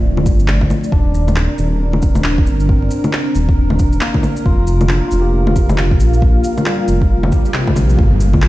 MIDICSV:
0, 0, Header, 1, 8, 480
1, 0, Start_track
1, 0, Tempo, 441176
1, 1005, Time_signature, 4, 2, 24, 8
1, 9227, End_track
2, 0, Start_track
2, 0, Title_t, "Synth texture"
2, 0, Program_c, 0, 99
2, 998, Note_on_c, 0, 70, 77
2, 8693, Note_off_c, 0, 70, 0
2, 9227, End_track
3, 0, Start_track
3, 0, Title_t, "Analog synth pad"
3, 0, Program_c, 1, 89
3, 0, Note_on_c, 1, 57, 86
3, 0, Note_on_c, 1, 65, 83
3, 0, Note_on_c, 1, 74, 94
3, 966, Note_off_c, 1, 57, 0
3, 966, Note_off_c, 1, 65, 0
3, 1007, Note_on_c, 1, 62, 81
3, 1008, Note_on_c, 1, 60, 87
3, 4800, Note_off_c, 1, 74, 0
3, 4807, Note_off_c, 1, 62, 0
3, 4808, Note_off_c, 1, 60, 0
3, 4849, Note_on_c, 1, 58, 92
3, 4852, Note_on_c, 1, 65, 82
3, 4852, Note_on_c, 1, 77, 100
3, 8648, Note_off_c, 1, 58, 0
3, 8650, Note_off_c, 1, 65, 0
3, 8650, Note_off_c, 1, 77, 0
3, 8691, Note_on_c, 1, 65, 84
3, 8693, Note_on_c, 1, 55, 90
3, 8696, Note_on_c, 1, 70, 97
3, 9227, Note_off_c, 1, 55, 0
3, 9227, Note_off_c, 1, 65, 0
3, 9227, Note_off_c, 1, 70, 0
3, 9227, End_track
4, 0, Start_track
4, 0, Title_t, "Tine electric piano"
4, 0, Program_c, 2, 4
4, 0, Control_c, 2, 64, 127
4, 0, Note_on_c, 2, 57, 78
4, 0, Note_on_c, 2, 60, 54
4, 0, Note_on_c, 2, 62, 51
4, 172, Note_off_c, 2, 60, 0
4, 1003, Note_off_c, 2, 62, 0
4, 1003, Note_on_c, 2, 62, 70
4, 1019, Control_c, 2, 64, 0
4, 1021, Note_off_c, 2, 57, 0
4, 1177, Control_c, 2, 64, 127
4, 1615, Note_off_c, 2, 62, 0
4, 2922, Note_on_c, 2, 60, 54
4, 3534, Note_off_c, 2, 60, 0
4, 4371, Note_on_c, 2, 58, 67
4, 4851, Note_on_c, 2, 65, 73
4, 4860, Control_c, 2, 64, 0
4, 4979, Note_off_c, 2, 58, 0
4, 5072, Control_c, 2, 64, 127
4, 5326, Note_on_c, 2, 62, 54
4, 5458, Note_off_c, 2, 65, 0
4, 5526, Note_on_c, 2, 65, 50
4, 5673, Note_on_c, 2, 67, 55
4, 5936, Note_off_c, 2, 62, 0
4, 6076, Note_off_c, 2, 65, 0
4, 6231, Note_off_c, 2, 67, 0
4, 7247, Note_on_c, 2, 55, 67
4, 7856, Note_off_c, 2, 55, 0
4, 8207, Note_on_c, 2, 48, 69
4, 8697, Control_c, 2, 64, 0
4, 8817, Note_off_c, 2, 48, 0
4, 8912, Control_c, 2, 64, 127
4, 9175, Note_on_c, 2, 46, 69
4, 9227, Note_off_c, 2, 46, 0
4, 9227, End_track
5, 0, Start_track
5, 0, Title_t, "Detuned saw bass"
5, 0, Program_c, 3, 39
5, 0, Note_on_c, 3, 26, 86
5, 272, Note_off_c, 3, 26, 0
5, 281, Note_on_c, 3, 31, 97
5, 751, Note_off_c, 3, 31, 0
5, 1004, Note_on_c, 3, 27, 95
5, 1611, Note_off_c, 3, 27, 0
5, 1720, Note_on_c, 3, 27, 91
5, 2682, Note_on_c, 3, 31, 87
5, 2699, Note_off_c, 3, 27, 0
5, 3151, Note_off_c, 3, 31, 0
5, 3646, Note_on_c, 3, 27, 89
5, 4113, Note_off_c, 3, 27, 0
5, 4129, Note_on_c, 3, 27, 80
5, 4352, Note_off_c, 3, 27, 0
5, 4846, Note_on_c, 3, 29, 97
5, 5452, Note_off_c, 3, 29, 0
5, 5569, Note_on_c, 3, 29, 85
5, 6527, Note_on_c, 3, 34, 92
5, 6543, Note_off_c, 3, 29, 0
5, 6994, Note_off_c, 3, 34, 0
5, 7485, Note_on_c, 3, 29, 91
5, 7953, Note_off_c, 3, 29, 0
5, 8444, Note_on_c, 3, 34, 93
5, 8669, Note_off_c, 3, 34, 0
5, 8690, Note_on_c, 3, 31, 98
5, 9227, Note_off_c, 3, 31, 0
5, 9227, End_track
6, 0, Start_track
6, 0, Title_t, "Impact"
6, 0, Program_c, 4, 103
6, 8686, Note_on_c, 4, 60, 76
6, 9227, Note_off_c, 4, 60, 0
6, 9227, End_track
7, 0, Start_track
7, 0, Title_t, "Swell"
7, 0, Program_c, 5, 103
7, 7725, Note_on_c, 5, 60, 74
7, 8685, Note_off_c, 5, 60, 0
7, 9227, End_track
8, 0, Start_track
8, 0, Title_t, "Drums"
8, 188, Note_on_c, 9, 61, 59
8, 283, Note_on_c, 9, 36, 106
8, 284, Note_on_c, 9, 82, 53
8, 297, Note_off_c, 9, 61, 0
8, 392, Note_off_c, 9, 36, 0
8, 392, Note_off_c, 9, 82, 0
8, 429, Note_on_c, 9, 82, 29
8, 521, Note_on_c, 9, 39, 99
8, 538, Note_off_c, 9, 82, 0
8, 630, Note_off_c, 9, 39, 0
8, 667, Note_on_c, 9, 61, 56
8, 669, Note_on_c, 9, 36, 63
8, 764, Note_off_c, 9, 61, 0
8, 764, Note_on_c, 9, 61, 48
8, 764, Note_on_c, 9, 82, 52
8, 778, Note_off_c, 9, 36, 0
8, 873, Note_off_c, 9, 61, 0
8, 873, Note_off_c, 9, 82, 0
8, 911, Note_on_c, 9, 82, 29
8, 1003, Note_on_c, 9, 36, 105
8, 1019, Note_off_c, 9, 82, 0
8, 1112, Note_off_c, 9, 36, 0
8, 1244, Note_on_c, 9, 82, 48
8, 1353, Note_off_c, 9, 82, 0
8, 1393, Note_on_c, 9, 61, 55
8, 1393, Note_on_c, 9, 82, 29
8, 1481, Note_on_c, 9, 39, 104
8, 1501, Note_off_c, 9, 61, 0
8, 1501, Note_off_c, 9, 82, 0
8, 1589, Note_off_c, 9, 39, 0
8, 1721, Note_on_c, 9, 82, 53
8, 1829, Note_off_c, 9, 82, 0
8, 2104, Note_on_c, 9, 61, 58
8, 2200, Note_on_c, 9, 82, 51
8, 2204, Note_on_c, 9, 36, 101
8, 2212, Note_off_c, 9, 61, 0
8, 2309, Note_off_c, 9, 82, 0
8, 2313, Note_off_c, 9, 36, 0
8, 2343, Note_on_c, 9, 61, 61
8, 2343, Note_on_c, 9, 82, 30
8, 2438, Note_on_c, 9, 39, 102
8, 2452, Note_off_c, 9, 61, 0
8, 2452, Note_off_c, 9, 82, 0
8, 2546, Note_off_c, 9, 39, 0
8, 2591, Note_on_c, 9, 36, 107
8, 2680, Note_on_c, 9, 82, 52
8, 2700, Note_off_c, 9, 36, 0
8, 2789, Note_off_c, 9, 82, 0
8, 2829, Note_on_c, 9, 82, 29
8, 2926, Note_on_c, 9, 36, 110
8, 2938, Note_off_c, 9, 82, 0
8, 3035, Note_off_c, 9, 36, 0
8, 3163, Note_on_c, 9, 82, 52
8, 3272, Note_off_c, 9, 82, 0
8, 3308, Note_on_c, 9, 61, 61
8, 3308, Note_on_c, 9, 82, 29
8, 3405, Note_on_c, 9, 39, 96
8, 3417, Note_off_c, 9, 61, 0
8, 3417, Note_off_c, 9, 82, 0
8, 3514, Note_off_c, 9, 39, 0
8, 3644, Note_on_c, 9, 82, 53
8, 3753, Note_off_c, 9, 82, 0
8, 3793, Note_on_c, 9, 36, 102
8, 3902, Note_off_c, 9, 36, 0
8, 4028, Note_on_c, 9, 61, 63
8, 4125, Note_on_c, 9, 82, 51
8, 4129, Note_on_c, 9, 36, 96
8, 4137, Note_off_c, 9, 61, 0
8, 4234, Note_off_c, 9, 82, 0
8, 4238, Note_off_c, 9, 36, 0
8, 4272, Note_on_c, 9, 82, 29
8, 4362, Note_on_c, 9, 39, 95
8, 4381, Note_off_c, 9, 82, 0
8, 4471, Note_off_c, 9, 39, 0
8, 4507, Note_on_c, 9, 61, 57
8, 4513, Note_on_c, 9, 36, 58
8, 4605, Note_off_c, 9, 61, 0
8, 4605, Note_on_c, 9, 61, 51
8, 4605, Note_on_c, 9, 82, 53
8, 4622, Note_off_c, 9, 36, 0
8, 4713, Note_off_c, 9, 61, 0
8, 4713, Note_off_c, 9, 82, 0
8, 4749, Note_on_c, 9, 82, 30
8, 4848, Note_on_c, 9, 36, 105
8, 4858, Note_off_c, 9, 82, 0
8, 4957, Note_off_c, 9, 36, 0
8, 5083, Note_on_c, 9, 82, 51
8, 5192, Note_off_c, 9, 82, 0
8, 5230, Note_on_c, 9, 61, 62
8, 5230, Note_on_c, 9, 82, 30
8, 5321, Note_on_c, 9, 39, 97
8, 5339, Note_off_c, 9, 61, 0
8, 5339, Note_off_c, 9, 82, 0
8, 5429, Note_off_c, 9, 39, 0
8, 5562, Note_on_c, 9, 82, 57
8, 5671, Note_off_c, 9, 82, 0
8, 5952, Note_on_c, 9, 61, 63
8, 6048, Note_on_c, 9, 36, 98
8, 6048, Note_on_c, 9, 82, 53
8, 6060, Note_off_c, 9, 61, 0
8, 6157, Note_off_c, 9, 36, 0
8, 6157, Note_off_c, 9, 82, 0
8, 6196, Note_on_c, 9, 61, 68
8, 6196, Note_on_c, 9, 82, 30
8, 6287, Note_on_c, 9, 39, 96
8, 6304, Note_off_c, 9, 61, 0
8, 6304, Note_off_c, 9, 82, 0
8, 6395, Note_off_c, 9, 39, 0
8, 6433, Note_on_c, 9, 36, 99
8, 6529, Note_on_c, 9, 82, 53
8, 6542, Note_off_c, 9, 36, 0
8, 6638, Note_off_c, 9, 82, 0
8, 6675, Note_on_c, 9, 82, 28
8, 6768, Note_on_c, 9, 36, 106
8, 6784, Note_off_c, 9, 82, 0
8, 6877, Note_off_c, 9, 36, 0
8, 7007, Note_on_c, 9, 82, 55
8, 7116, Note_off_c, 9, 82, 0
8, 7154, Note_on_c, 9, 61, 60
8, 7154, Note_on_c, 9, 82, 31
8, 7245, Note_on_c, 9, 39, 98
8, 7263, Note_off_c, 9, 61, 0
8, 7263, Note_off_c, 9, 82, 0
8, 7353, Note_off_c, 9, 39, 0
8, 7486, Note_on_c, 9, 82, 57
8, 7594, Note_off_c, 9, 82, 0
8, 7632, Note_on_c, 9, 36, 103
8, 7741, Note_off_c, 9, 36, 0
8, 7870, Note_on_c, 9, 61, 64
8, 7963, Note_on_c, 9, 82, 55
8, 7968, Note_on_c, 9, 36, 99
8, 7979, Note_off_c, 9, 61, 0
8, 8072, Note_off_c, 9, 82, 0
8, 8076, Note_off_c, 9, 36, 0
8, 8110, Note_on_c, 9, 82, 32
8, 8203, Note_on_c, 9, 39, 94
8, 8219, Note_off_c, 9, 82, 0
8, 8312, Note_off_c, 9, 39, 0
8, 8350, Note_on_c, 9, 61, 64
8, 8353, Note_on_c, 9, 36, 60
8, 8446, Note_off_c, 9, 61, 0
8, 8446, Note_on_c, 9, 61, 54
8, 8446, Note_on_c, 9, 82, 57
8, 8462, Note_off_c, 9, 36, 0
8, 8555, Note_off_c, 9, 61, 0
8, 8555, Note_off_c, 9, 82, 0
8, 8591, Note_on_c, 9, 82, 31
8, 8689, Note_on_c, 9, 36, 116
8, 8699, Note_off_c, 9, 82, 0
8, 8798, Note_off_c, 9, 36, 0
8, 8927, Note_on_c, 9, 82, 56
8, 9035, Note_off_c, 9, 82, 0
8, 9067, Note_on_c, 9, 61, 62
8, 9074, Note_on_c, 9, 36, 59
8, 9161, Note_on_c, 9, 39, 103
8, 9176, Note_off_c, 9, 61, 0
8, 9183, Note_off_c, 9, 36, 0
8, 9227, Note_off_c, 9, 39, 0
8, 9227, End_track
0, 0, End_of_file